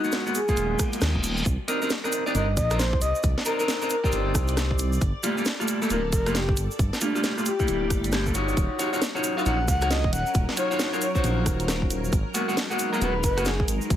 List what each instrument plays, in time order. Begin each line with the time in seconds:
Already playing: string machine F#3
0.04 clean electric guitar G#3 A#3 B3 F#4, cabasa
0.12 snare, closed hi-hat, cabasa
0.26 clean electric guitar G#3 A#3 B3 F#4, cross-stick, cabasa
0.35 soft synth lead G#4, closed hi-hat, cabasa
0.48 clean electric guitar G#3 A#3 B3 F4, kick, closed hi-hat, cabasa
0.57 detuned saw bass D#1, closed hi-hat, reverse cymbal, cabasa
0.79 kick, cross-stick, closed hi-hat, cabasa
0.93 closed hi-hat, cabasa
1.01 detuned saw bass D#2, cross-stick, snare, closed hi-hat, cabasa
1.15 detuned saw bass D#1, kick
1.24 detuned saw bass D#1, closed hi-hat, cabasa
1.37 cabasa
1.46 detuned saw bass C2, string machine G4 D5, kick, closed hi-hat, cabasa
1.68 clean electric guitar C4 D4 D#4 A#4, closed hi-hat, cabasa
1.82 clean electric guitar C4 D4 D#4 A#4, cabasa
1.90 snare, closed hi-hat, cabasa
2.04 clean electric guitar C4 D4 D#4 A#4, cross-stick, cabasa
2.12 closed hi-hat, cabasa
2.26 clean electric guitar C4 D4 D#4 D5, cabasa
2.35 detuned saw bass G1, clean electric guitar C4 D4 D#4 A#4, soft synth lead D#5, closed hi-hat, cabasa
2.57 detuned saw bass A#1, soft synth lead D#5, kick, closed hi-hat, cabasa
2.70 clean electric guitar C4 D4 D#4 A#4, cross-stick, closed hi-hat, cabasa
2.79 soft synth lead C5, snare, closed hi-hat, cabasa
2.93 detuned saw bass C2, kick
3.01 detuned saw bass C2, soft synth lead D#5, closed hi-hat, cabasa
3.15 cabasa
3.23 detuned saw bass C2, kick, closed hi-hat, cabasa
3.38 snare
3.45 clean electric guitar C4 D4 D#4 A#4, soft synth lead A#4, closed hi-hat, cabasa
3.59 clean electric guitar C4 D4 D#4 A#4, cabasa
3.68 snare, closed hi-hat, cabasa
3.82 clean electric guitar C4 D4 D#4 A#4, cross-stick, cabasa
3.90 soft synth lead A#4, closed hi-hat, cabasa
4.04 clean electric guitar C4 D4 D#4 G4, soft synth lead A#4, kick, cabasa
4.12 detuned saw bass G1, closed hi-hat, cabasa
4.35 detuned saw bass C2, kick, cross-stick, closed hi-hat, cabasa
4.48 closed hi-hat, cabasa
4.57 cross-stick, snare, closed hi-hat, cabasa
4.71 kick
4.78 closed hi-hat, cabasa
4.93 cabasa
5.01 detuned saw bass G1, string machine A4, kick, closed hi-hat, cabasa
5.23 clean electric guitar G3 A3 A#3 F4, closed hi-hat, cabasa
5.37 clean electric guitar G3 A3 A#3 F4, cabasa
5.45 snare, closed hi-hat, cabasa
5.59 clean electric guitar G3 A3 A#3 F4, cross-stick, cabasa
5.68 closed hi-hat, cabasa
5.82 clean electric guitar G3 A3 A#3 A4, cabasa
5.90 detuned saw bass D1, clean electric guitar G3 A3 A#3 F4, soft synth lead A#4, closed hi-hat, cabasa
6.12 detuned saw bass F1, soft synth lead A#4, kick, closed hi-hat, cabasa
6.26 clean electric guitar G3 A3 A#3 F4, cross-stick, closed hi-hat, cabasa
6.35 soft synth lead G4, snare, closed hi-hat, cabasa
6.49 detuned saw bass G1, kick
6.57 detuned saw bass G1, closed hi-hat, cabasa
6.71 cabasa
6.79 detuned saw bass G1, string machine G4, kick, closed hi-hat, cabasa
6.93 snare, cabasa
7.01 clean electric guitar G3 A3 A#3 F4, soft synth lead D4, closed hi-hat, cabasa
7.15 clean electric guitar G3 A3 A#3 F4, cabasa
7.24 snare, closed hi-hat, cabasa
7.37 clean electric guitar G3 A3 A#3 F4, cross-stick, cabasa
7.46 soft synth lead G4, closed hi-hat, cabasa
7.59 clean electric guitar G3 A3 A#3 E4, kick, cabasa
7.68 detuned saw bass D1, closed hi-hat, cabasa
7.90 detuned saw bass G1, kick, cross-stick, closed hi-hat, cabasa
8.04 closed hi-hat, cabasa
8.12 clean electric guitar G3 A3 A#3 G4, cross-stick, snare, closed hi-hat, cabasa
8.26 clean electric guitar G3 A3 A#3 A4, kick, cabasa
8.34 clean electric guitar D#4 F4 F#4 C#5, closed hi-hat, cabasa
8.48 cabasa
8.57 detuned saw bass D#1, string machine F#3 C#4 A#4, kick, closed hi-hat, cabasa
8.79 clean electric guitar D#4 F4 F#4 C#5, closed hi-hat, cabasa
8.93 clean electric guitar D#4 F4 F#4 C#5, cabasa
9.02 snare, closed hi-hat, cabasa
9.15 clean electric guitar D#4 F4 F#4 C#5, cross-stick, cabasa
9.24 closed hi-hat, cabasa
9.37 clean electric guitar D#4 F4 F#4 F5, cabasa
9.46 detuned saw bass A#1, clean electric guitar D#4 F4 F#4 C#5, soft synth lead F#5, closed hi-hat, cabasa
9.68 detuned saw bass C#2, soft synth lead F#5, kick, closed hi-hat, cabasa
9.81 clean electric guitar D#4 F4 F#4 C#5, cross-stick, closed hi-hat, cabasa
9.91 soft synth lead D#5, snare, closed hi-hat, cabasa
10.04 detuned saw bass D#1, kick
10.13 detuned saw bass D#1, soft synth lead F#5, closed hi-hat, cabasa
10.26 cabasa
10.34 detuned saw bass D#1, kick, closed hi-hat, cabasa
10.49 snare
10.57 clean electric guitar D#4 F4 F#4 C#5, soft synth lead C#5, closed hi-hat, cabasa
10.70 clean electric guitar D#4 F4 F#4 C#5, cabasa
10.79 snare, closed hi-hat, cabasa
10.93 clean electric guitar D#4 F4 F#4 C#5, cross-stick, cabasa
11.02 soft synth lead C#5, closed hi-hat, cabasa
11.15 clean electric guitar D#4 F4 F#4 C5, soft synth lead C#5, kick, cabasa
11.24 detuned saw bass A#1, closed hi-hat, cabasa
11.46 detuned saw bass D#1, kick, cross-stick, closed hi-hat, cabasa
11.60 closed hi-hat, cabasa
11.68 cross-stick, snare, closed hi-hat, cabasa
11.82 kick
11.90 closed hi-hat, cabasa
12.04 cabasa
12.12 detuned saw bass G#1, string machine G#3 D#4, kick, closed hi-hat, cabasa
12.34 clean electric guitar G#3 A#3 B3 F#4, closed hi-hat, cabasa
12.48 clean electric guitar G#3 A#3 B3 F#4, cabasa
12.57 snare, closed hi-hat, cabasa
12.70 clean electric guitar G#3 A#3 B3 F#4, cross-stick, cabasa
12.79 closed hi-hat, cabasa
12.93 clean electric guitar G#3 A#3 B3 A#4, cabasa
13.01 detuned saw bass D#1, clean electric guitar G#3 A#3 B3 F#4, soft synth lead B4, closed hi-hat, cabasa
13.24 detuned saw bass F#1, soft synth lead B4, kick, closed hi-hat, cabasa
13.37 clean electric guitar G#3 A#3 B3 F#4, cross-stick, closed hi-hat, cabasa
13.45 soft synth lead G#4, snare, closed hi-hat, cabasa
13.60 detuned saw bass G#1, kick
13.68 detuned saw bass G#1, closed hi-hat, cabasa
13.81 cabasa
13.90 detuned saw bass G#1, kick, closed hi-hat, cabasa